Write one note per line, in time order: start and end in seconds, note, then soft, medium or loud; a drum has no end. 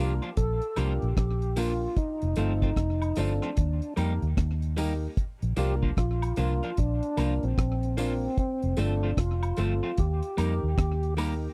0.00 0.19 C2 medium
0.00 0.11 F3 medium
0.00 0.12 A#3 medium
0.00 0.22 A#3 loud
0.00 0.12 D4 medium
0.00 0.22 D4 medium
0.00 0.12 F4 loud
0.00 0.22 F4 medium
0.00 0.15 G4 medium
0.00 0.23 A#4 medium
0.22 0.30 F3 medium
0.22 0.29 A#3 medium
0.22 0.29 D4 medium
0.22 0.29 F4 medium
0.22 closed hi-hat soft
0.37 0.59 A#1 loud
0.37 0.78 A4 loud
0.37 kick loud
0.37 closed hi-hat medium
0.62 closed hi-hat soft
0.76 0.99 C2 medium
0.76 0.92 F3 medium
0.76 1.02 A#3 medium
0.76 0.92 A#3 loud
0.76 1.03 D4 medium
0.76 0.92 D4 loud
0.76 1.03 F4 medium
0.76 0.92 F4 loud
0.76 1.16 G4 medium
0.76 1.03 A#4 loud
0.76 closed hi-hat medium
0.76 tambourine soft
0.76 high woodblock medium
1.02 1.15 A#1 medium
1.02 closed hi-hat soft
1.17 1.86 A#1 medium
1.17 1.58 G4 loud
1.17 kick loud
1.17 cross-stick loud
1.17 closed hi-hat medium
1.42 closed hi-hat soft
1.56 1.72 F3 medium
1.56 1.82 A#3 medium
1.56 1.72 A#3 medium
1.56 1.83 D4 medium
1.56 1.72 D4 medium
1.56 1.83 F4 medium
1.56 1.98 F4 medium
1.56 1.73 F4 medium
1.56 1.83 A#4 medium
1.56 open hi-hat medium
1.56 tambourine medium
1.97 3.21 D#4 loud
1.97 kick loud
1.97 closed hi-hat medium
2.22 2.35 F1 medium
2.22 closed hi-hat soft
2.36 2.72 G1 medium
2.36 2.52 F3 medium
2.36 2.63 A3 loud
2.36 2.52 A3 medium
2.36 2.63 C4 medium
2.36 2.52 C4 medium
2.36 2.63 F4 medium
2.36 2.53 F4 medium
2.36 2.63 A4 loud
2.36 closed hi-hat medium
2.36 tambourine medium
2.62 2.70 F3 soft
2.62 2.70 A3 soft
2.62 2.69 C4 medium
2.62 2.69 F4 medium
2.62 kick medium
2.62 closed hi-hat soft
2.76 3.11 F1 medium
2.76 kick loud
2.76 cross-stick medium
2.76 closed hi-hat medium
3.02 closed hi-hat medium
3.02 high woodblock medium
3.16 3.39 G1 medium
3.16 3.32 F3 medium
3.16 3.43 A3 medium
3.16 3.32 A3 loud
3.16 3.43 C4 medium
3.16 3.33 C4 medium
3.16 3.94 D4 medium
3.16 3.43 F4 medium
3.16 3.33 F4 medium
3.16 3.43 A4 loud
3.16 closed hi-hat medium
3.16 tambourine medium
3.42 3.50 F3 medium
3.42 3.50 A3 medium
3.42 3.49 C4 medium
3.42 3.49 F4 medium
3.42 cross-stick medium
3.57 3.79 D#2 medium
3.57 kick loud
3.57 closed hi-hat medium
3.82 closed hi-hat soft
3.96 4.19 F2 medium
3.96 4.12 G3 medium
3.96 4.23 A#3 medium
3.96 4.12 A#3 medium
3.96 4.23 D#4 medium
3.96 4.12 D#4 medium
3.96 4.23 G4 medium
3.96 4.13 G4 medium
3.96 4.23 A#4 medium
3.96 closed hi-hat medium
3.96 tambourine soft
3.96 high woodblock medium
4.22 4.35 D#2 medium
4.22 closed hi-hat soft
4.37 5.06 D#2 loud
4.37 kick loud
4.37 cross-stick loud
4.37 closed hi-hat medium
4.62 closed hi-hat soft
4.76 4.92 G3 medium
4.76 5.03 A#3 medium
4.76 4.92 A#3 medium
4.76 5.03 D#4 medium
4.76 4.93 D#4 medium
4.76 5.03 G4 medium
4.76 4.93 G4 medium
4.76 5.03 A#4 medium
4.76 open hi-hat medium
4.76 tambourine medium
5.17 kick loud
5.17 closed hi-hat medium
5.42 5.55 A#1 medium
5.42 closed hi-hat soft
5.57 5.92 C2 medium
5.57 5.72 F3 medium
5.57 5.83 A#3 loud
5.57 5.72 A#3 medium
5.57 5.83 D4 medium
5.57 5.73 D4 medium
5.57 5.83 F4 medium
5.57 5.73 F4 medium
5.57 5.75 G4 loud
5.57 5.83 A#4 loud
5.57 closed hi-hat medium
5.57 tambourine medium
5.83 5.90 F3 medium
5.83 5.90 A#3 medium
5.83 5.90 D4 soft
5.83 5.89 F4 medium
5.83 kick medium
5.97 6.32 A#1 medium
5.97 6.80 F4 medium
5.97 kick loud
5.97 cross-stick loud
5.97 closed hi-hat medium
6.22 closed hi-hat medium
6.22 high woodblock medium
6.36 6.59 C2 medium
6.36 6.52 F3 medium
6.36 6.63 A#3 medium
6.36 6.53 A#3 medium
6.36 6.63 D4 medium
6.36 6.53 D4 medium
6.36 6.64 F4 medium
6.36 6.53 F4 loud
6.36 6.64 A#4 medium
6.36 closed hi-hat medium
6.36 tambourine medium
6.63 6.70 F3 medium
6.63 6.70 A#3 medium
6.63 6.70 D4 medium
6.63 6.70 F4 medium
6.63 closed hi-hat soft
6.77 7.00 A#1 medium
6.77 7.45 D4 loud
6.77 kick loud
6.77 closed hi-hat medium
7.03 closed hi-hat medium
7.17 7.39 C2 medium
7.17 7.32 F3 medium
7.17 7.43 A#3 medium
7.17 7.33 A#3 medium
7.17 7.43 D4 medium
7.17 7.33 D4 medium
7.17 7.43 F4 medium
7.17 7.33 F4 loud
7.17 7.44 A#4 medium
7.17 closed hi-hat medium
7.17 tambourine soft
7.17 high woodblock medium
7.43 7.56 A#1 medium
7.43 7.97 C4 medium
7.43 closed hi-hat soft
7.58 8.27 A#1 medium
7.58 kick loud
7.58 cross-stick loud
7.58 closed hi-hat medium
7.83 closed hi-hat soft
7.97 8.12 F3 medium
7.97 8.23 A#3 medium
7.97 8.13 A#3 medium
7.97 8.38 C4 medium
7.97 8.23 D4 medium
7.97 8.13 D4 medium
7.97 8.24 F4 medium
7.97 8.13 F4 loud
7.97 8.24 A#4 medium
7.97 open hi-hat medium
7.97 tambourine medium
8.38 8.79 C4 medium
8.38 kick loud
8.38 closed hi-hat medium
8.62 8.76 F1 medium
8.62 closed hi-hat soft
8.77 9.12 G1 medium
8.77 8.92 F3 medium
8.77 9.03 A3 loud
8.77 8.93 A3 medium
8.77 9.03 C4 medium
8.77 8.93 C4 medium
8.77 9.19 D4 medium
8.77 9.03 F4 medium
8.77 8.93 F4 medium
8.77 9.04 A4 loud
8.77 closed hi-hat medium
8.77 tambourine medium
9.03 9.11 F3 soft
9.03 9.10 A3 soft
9.03 9.10 C4 medium
9.03 9.10 F4 medium
9.17 9.52 F1 loud
9.17 10.00 F4 medium
9.17 kick medium
9.17 cross-stick loud
9.17 closed hi-hat medium
9.43 closed hi-hat medium
9.43 high woodblock medium
9.57 9.80 G1 medium
9.57 9.72 F3 medium
9.57 9.83 A3 medium
9.57 9.73 A3 medium
9.57 9.83 C4 medium
9.57 9.73 C4 medium
9.57 9.84 F4 medium
9.57 9.73 F4 medium
9.57 9.84 A4 loud
9.57 closed hi-hat medium
9.57 tambourine medium
9.83 9.90 F3 medium
9.83 9.90 A3 medium
9.83 9.90 C4 medium
9.83 9.90 F4 medium
9.98 10.20 D#2 loud
9.98 11.14 G4 medium
9.98 kick loud
9.98 closed hi-hat medium
10.23 closed hi-hat medium
10.37 10.60 F2 medium
10.37 10.52 G3 medium
10.37 10.63 A#3 medium
10.37 10.53 A#3 medium
10.37 10.63 D#4 medium
10.37 10.53 D#4 medium
10.37 10.64 G4 medium
10.37 10.53 G4 medium
10.37 10.64 A#4 loud
10.37 closed hi-hat loud
10.37 tambourine soft
10.37 high woodblock medium
10.63 10.76 D#2 medium
10.78 11.47 D#2 medium
10.78 kick loud
10.78 cross-stick loud
10.78 closed hi-hat medium
11.03 closed hi-hat soft
11.17 11.32 G3 medium
11.17 11.43 A#3 medium
11.17 11.33 A#3 medium
11.17 11.43 D#4 medium
11.17 11.33 D#4 medium
11.17 11.43 G4 medium
11.17 11.33 G4 loud
11.17 11.44 A#4 loud
11.17 open hi-hat medium
11.17 tambourine medium
11.17 high woodblock medium